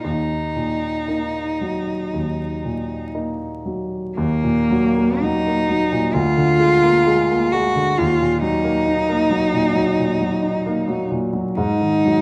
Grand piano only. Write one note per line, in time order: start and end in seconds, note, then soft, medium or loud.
0.04 2.10 D#2 soft
0.56 1.40 A#2 soft
1.08 1.57 A#3 soft
1.08 1.58 D#4 soft
1.61 2.45 F#3 soft
2.14 4.13 D#2 soft
2.64 3.44 A#2 soft
3.14 3.61 A#3 soft
3.14 3.61 D#4 soft
3.66 4.17 F#3 soft
4.17 6.10 D#2 medium
4.43 4.86 A#2 soft
4.71 5.12 F#3 soft
4.98 5.37 A#3 soft
5.23 5.60 F#3 soft
5.47 5.83 A#3 soft
5.69 6.05 F#3 soft
5.92 6.14 A#2 soft
6.14 7.95 D2 medium
6.37 6.74 D3 soft
6.59 6.97 G#3 soft
6.83 7.21 A#3 soft
7.07 7.44 G#3 medium
7.31 7.67 A#3 soft
7.53 7.90 G#3 soft
7.75 7.98 D3 soft
7.98 11.52 D#2 medium
8.21 8.56 A#2 soft
8.42 8.78 F#3 soft
8.64 9.00 A#3 soft
8.86 9.22 D#4 soft
9.09 9.45 A#3 soft
9.31 9.67 F#3 soft
9.54 9.90 A#2 soft
9.75 10.12 F#3 medium
9.98 10.34 A#2 soft
10.21 10.57 F#3 soft
10.42 10.79 D#4 medium
10.66 11.02 A#3 soft
10.88 11.24 F#3 soft
11.11 11.47 A#2 soft
11.33 11.56 F#3 soft
11.57 12.21 G#2 medium
11.81 12.20 D#3 soft
12.06 12.21 F#3 soft